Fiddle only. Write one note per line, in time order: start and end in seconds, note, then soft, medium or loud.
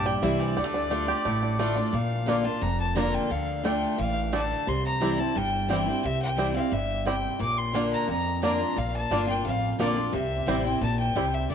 0.06 0.24 G5 medium
0.22 0.41 E5 medium
0.39 1.59 D5 medium
1.60 1.96 D5 medium
1.94 2.46 F5 medium
2.45 2.63 A5 loud
2.62 2.79 A#5 loud
2.80 2.95 A5 loud
2.97 3.16 A#5 loud
3.14 3.33 G5 medium
3.31 3.65 F5 medium
3.65 3.97 G5 medium
4.00 4.31 F5 loud
4.34 4.70 A5 loud
4.68 4.85 C6 loud
4.86 5.21 A#5 loud
5.20 5.39 A5 loud
5.37 5.70 G5 loud
5.71 6.07 G5 loud
6.05 6.22 E5 loud
6.22 6.53 G5 loud
6.56 6.74 F5 medium
6.73 7.06 E5 loud
7.07 7.38 G5 medium
7.41 7.59 D6 loud
7.58 7.92 C6 loud
7.93 8.08 A#5 loud
8.10 8.41 A#5 loud
8.44 8.80 A#5 medium
8.78 8.95 F5 loud
8.96 9.27 A5 loud
9.30 9.45 G5 loud
9.46 9.77 F5 loud
9.81 10.12 D5 medium
10.14 10.62 E5 medium
10.65 10.81 G5 medium
10.83 10.98 A5 loud
10.99 11.36 G5 loud
11.34 11.50 E5 medium
11.50 11.55 D5 medium